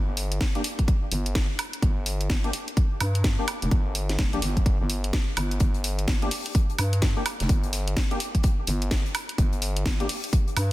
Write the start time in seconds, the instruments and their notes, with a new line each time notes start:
Already playing: fm bass G1
0.17 open hi-hat
0.32 closed hi-hat
0.41 kick, snare, closed hi-hat
0.55 synth stab A#3 D4 G4, closed hi-hat
0.64 open hi-hat
0.79 kick, closed hi-hat
0.88 kick, closed hi-hat
1.12 fm bass G1, open hi-hat
1.26 closed hi-hat
1.35 kick, snare, closed hi-hat
1.59 open hi-hat, high woodblock
1.73 closed hi-hat
1.82 fm bass G1, kick, closed hi-hat
2.06 open hi-hat
2.21 closed hi-hat
2.30 fm bass G1, kick, snare, closed hi-hat
2.44 synth stab A#3 D4 G4, closed hi-hat
2.53 open hi-hat
2.68 closed hi-hat
2.77 kick, closed hi-hat
3.01 fm bass G2, open hi-hat, high woodblock
3.15 closed hi-hat
3.24 kick, snare, closed hi-hat
3.39 synth stab A#3 D4 G4
3.48 open hi-hat, high woodblock
3.62 fm bass F1, closed hi-hat
3.71 fm bass G1, kick, closed hi-hat
3.95 open hi-hat
4.09 snare, closed hi-hat
4.19 fm bass F1, kick, snare, closed hi-hat
4.33 fm bass A#1, synth stab A#3 D4 G4, closed hi-hat
4.42 fm bass G1, open hi-hat
4.57 kick, closed hi-hat
4.66 kick, closed hi-hat
4.81 fm bass G1
4.90 open hi-hat
5.04 closed hi-hat
5.13 kick, snare, closed hi-hat
5.37 fm bass G1, open hi-hat, high woodblock
5.51 closed hi-hat
5.60 fm bass G1, kick, closed hi-hat
5.74 closed hi-hat
5.84 closed hi-hat, open hi-hat
5.99 closed hi-hat
6.08 fm bass G1, kick, snare, closed hi-hat
6.22 synth stab A#3 D4 G4, closed hi-hat
6.31 open hi-hat
6.46 closed hi-hat
6.55 kick, closed hi-hat
6.70 closed hi-hat
6.79 fm bass G2, closed hi-hat, open hi-hat, high woodblock
6.93 closed hi-hat
7.02 kick, snare, closed hi-hat
7.17 synth stab A#3 D4 G4
7.26 closed hi-hat, open hi-hat, high woodblock
7.40 fm bass F1, snare, closed hi-hat
7.49 fm bass G1, kick, closed hi-hat
7.63 closed hi-hat
7.73 snare, closed hi-hat, open hi-hat
7.88 closed hi-hat
7.97 kick, snare, closed hi-hat
8.11 synth stab A#3 D4 G4, closed hi-hat
8.20 closed hi-hat, open hi-hat
8.35 kick, closed hi-hat
8.43 kick, closed hi-hat
8.67 fm bass G1, closed hi-hat, open hi-hat
8.82 closed hi-hat
8.91 kick, snare, closed hi-hat
9.06 closed hi-hat
9.14 snare, closed hi-hat, open hi-hat, high woodblock
9.29 closed hi-hat
9.38 fm bass G1, kick, closed hi-hat
9.53 closed hi-hat
9.62 closed hi-hat, open hi-hat
9.77 closed hi-hat
9.86 fm bass G1, kick, snare, closed hi-hat
10.00 synth stab A#3 D4 G4, closed hi-hat
10.09 open hi-hat
10.24 closed hi-hat
10.33 kick, closed hi-hat
10.48 closed hi-hat
10.56 fm bass G2, closed hi-hat, open hi-hat, high woodblock